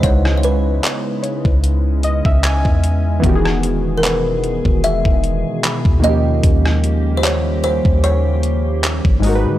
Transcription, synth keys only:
0, 0, Header, 1, 2, 480
1, 0, Start_track
1, 0, Tempo, 800000
1, 19, Time_signature, 4, 2, 24, 8
1, 5752, End_track
2, 0, Start_track
2, 0, Title_t, "Synth keys"
2, 0, Program_c, 0, 88
2, 0, Control_c, 0, 64, 127
2, 0, Note_on_c, 0, 49, 70
2, 0, Note_on_c, 0, 56, 62
2, 0, Note_on_c, 0, 63, 63
2, 0, Note_on_c, 0, 64, 64
2, 0, Note_on_c, 0, 71, 75
2, 1226, Note_on_c, 0, 75, 72
2, 1343, Note_off_c, 0, 75, 0
2, 1355, Note_on_c, 0, 76, 72
2, 1455, Note_off_c, 0, 76, 0
2, 1466, Note_on_c, 0, 80, 77
2, 1664, Note_off_c, 0, 49, 0
2, 1671, Note_off_c, 0, 56, 0
2, 1678, Note_off_c, 0, 63, 0
2, 1685, Note_off_c, 0, 64, 0
2, 1692, Note_off_c, 0, 71, 0
2, 1918, Note_off_c, 0, 80, 0
2, 1918, Note_on_c, 0, 52, 78
2, 1932, Note_on_c, 0, 59, 75
2, 1945, Note_on_c, 0, 51, 72
2, 1947, Control_c, 0, 64, 0
2, 1959, Note_on_c, 0, 66, 70
2, 1973, Note_on_c, 0, 67, 71
2, 1999, Note_off_c, 0, 67, 0
2, 2012, Note_on_c, 0, 68, 83
2, 2053, Control_c, 0, 64, 127
2, 3585, Note_off_c, 0, 52, 0
2, 3592, Note_off_c, 0, 51, 0
2, 3592, Note_off_c, 0, 59, 0
2, 3599, Note_on_c, 0, 51, 66
2, 3605, Note_off_c, 0, 66, 0
2, 3613, Note_on_c, 0, 58, 65
2, 3627, Note_on_c, 0, 61, 61
2, 3628, Control_c, 0, 64, 0
2, 3632, Note_off_c, 0, 68, 0
2, 3641, Note_on_c, 0, 53, 61
2, 3655, Note_on_c, 0, 67, 71
2, 3716, Control_c, 0, 64, 127
2, 5505, Note_off_c, 0, 51, 0
2, 5512, Note_off_c, 0, 58, 0
2, 5518, Note_on_c, 0, 44, 82
2, 5519, Note_off_c, 0, 61, 0
2, 5526, Note_off_c, 0, 53, 0
2, 5532, Note_on_c, 0, 56, 76
2, 5533, Note_off_c, 0, 67, 0
2, 5545, Note_on_c, 0, 63, 77
2, 5548, Control_c, 0, 64, 0
2, 5560, Note_on_c, 0, 66, 74
2, 5574, Note_on_c, 0, 70, 69
2, 5599, Note_off_c, 0, 70, 0
2, 5612, Note_on_c, 0, 71, 90
2, 5660, Control_c, 0, 64, 127
2, 5752, Note_off_c, 0, 44, 0
2, 5752, Note_off_c, 0, 56, 0
2, 5752, Note_off_c, 0, 63, 0
2, 5752, Note_off_c, 0, 66, 0
2, 5752, Note_off_c, 0, 71, 0
2, 5752, End_track
0, 0, End_of_file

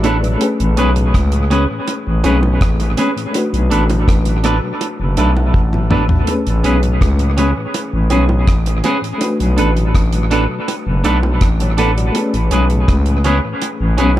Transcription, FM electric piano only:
0, 0, Header, 1, 2, 480
1, 0, Start_track
1, 0, Key_signature, 3, "major"
1, 0, Tempo, 733855
1, 266, Time_signature, 4, 2, 24, 8
1, 9287, End_track
2, 0, Start_track
2, 0, Title_t, "FM electric piano"
2, 0, Program_c, 0, 5
2, 0, Control_c, 0, 64, 127
2, 0, Note_on_c, 0, 57, 72
2, 0, Note_on_c, 0, 66, 52
2, 0, Note_on_c, 0, 68, 51
2, 0, Note_on_c, 0, 74, 66
2, 0, Note_on_c, 0, 76, 56
2, 27, Note_on_c, 0, 73, 69
2, 31, Note_on_c, 0, 64, 57
2, 143, Note_off_c, 0, 73, 0
2, 145, Note_off_c, 0, 64, 0
2, 147, Note_on_c, 0, 71, 59
2, 153, Note_on_c, 0, 62, 49
2, 230, Note_off_c, 0, 57, 0
2, 245, Note_on_c, 0, 57, 79
2, 257, Note_on_c, 0, 61, 71
2, 272, Note_off_c, 0, 68, 0
2, 272, Note_on_c, 0, 68, 73
2, 274, Control_c, 0, 64, 0
2, 275, Note_off_c, 0, 71, 0
2, 275, Note_off_c, 0, 74, 0
2, 276, Note_off_c, 0, 76, 0
2, 277, Note_off_c, 0, 66, 0
2, 283, Note_on_c, 0, 71, 81
2, 379, Note_off_c, 0, 62, 0
2, 408, Control_c, 0, 64, 127
2, 1432, Note_off_c, 0, 57, 0
2, 1438, Note_off_c, 0, 61, 0
2, 1445, Note_off_c, 0, 68, 0
2, 1451, Note_off_c, 0, 71, 0
2, 1463, Note_on_c, 0, 57, 55
2, 1470, Note_on_c, 0, 60, 44
2, 1476, Note_on_c, 0, 68, 47
2, 1482, Note_on_c, 0, 71, 62
2, 1510, Note_on_c, 0, 61, 54
2, 1511, Note_off_c, 0, 60, 0
2, 2159, Note_off_c, 0, 57, 0
2, 2167, Note_on_c, 0, 57, 69
2, 2178, Note_on_c, 0, 62, 66
2, 2191, Note_off_c, 0, 68, 0
2, 2193, Note_on_c, 0, 66, 67
2, 2194, Note_off_c, 0, 71, 0
2, 2195, Control_c, 0, 64, 0
2, 2205, Note_on_c, 0, 71, 82
2, 2208, Note_off_c, 0, 61, 0
2, 2300, Control_c, 0, 64, 127
2, 3389, Note_on_c, 0, 76, 67
2, 3502, Note_off_c, 0, 76, 0
2, 3513, Note_on_c, 0, 78, 66
2, 3620, Note_off_c, 0, 78, 0
2, 3627, Note_on_c, 0, 81, 62
2, 3850, Note_off_c, 0, 81, 0
2, 3868, Note_on_c, 0, 83, 64
2, 4070, Note_off_c, 0, 57, 0
2, 4076, Note_off_c, 0, 62, 0
2, 4084, Note_off_c, 0, 66, 0
2, 4086, Note_on_c, 0, 57, 71
2, 4089, Note_off_c, 0, 71, 0
2, 4091, Note_off_c, 0, 83, 0
2, 4099, Note_on_c, 0, 59, 49
2, 4112, Note_on_c, 0, 68, 65
2, 4115, Control_c, 0, 64, 0
2, 4125, Note_on_c, 0, 71, 82
2, 4141, Note_on_c, 0, 61, 60
2, 4146, Note_off_c, 0, 59, 0
2, 4223, Control_c, 0, 64, 127
2, 5990, Note_off_c, 0, 57, 0
2, 6003, Note_off_c, 0, 68, 0
2, 6004, Note_on_c, 0, 57, 72
2, 6009, Note_off_c, 0, 71, 0
2, 6016, Note_on_c, 0, 62, 67
2, 6017, Note_off_c, 0, 61, 0
2, 6031, Note_on_c, 0, 66, 61
2, 6035, Control_c, 0, 64, 0
2, 6044, Note_on_c, 0, 71, 80
2, 6129, Control_c, 0, 64, 127
2, 7442, Note_off_c, 0, 66, 0
2, 7449, Note_off_c, 0, 71, 0
2, 7589, Note_on_c, 0, 81, 59
2, 7592, Note_on_c, 0, 73, 52
2, 7700, Note_off_c, 0, 81, 0
2, 7702, Note_off_c, 0, 73, 0
2, 7708, Note_on_c, 0, 78, 69
2, 7712, Note_on_c, 0, 69, 59
2, 7823, Note_off_c, 0, 78, 0
2, 7825, Note_off_c, 0, 69, 0
2, 7830, Note_on_c, 0, 74, 66
2, 7833, Note_on_c, 0, 66, 50
2, 7908, Note_off_c, 0, 57, 0
2, 7915, Note_off_c, 0, 62, 0
2, 7927, Note_on_c, 0, 57, 77
2, 7940, Note_on_c, 0, 59, 52
2, 7954, Note_on_c, 0, 68, 64
2, 7955, Control_c, 0, 64, 0
2, 7967, Note_on_c, 0, 71, 82
2, 7985, Note_on_c, 0, 61, 67
2, 7986, Note_off_c, 0, 59, 0
2, 8057, Note_off_c, 0, 74, 0
2, 8059, Note_off_c, 0, 66, 0
2, 8072, Control_c, 0, 64, 127
2, 9287, Note_off_c, 0, 57, 0
2, 9287, Note_off_c, 0, 61, 0
2, 9287, Note_off_c, 0, 68, 0
2, 9287, Note_off_c, 0, 71, 0
2, 9287, End_track
0, 0, End_of_file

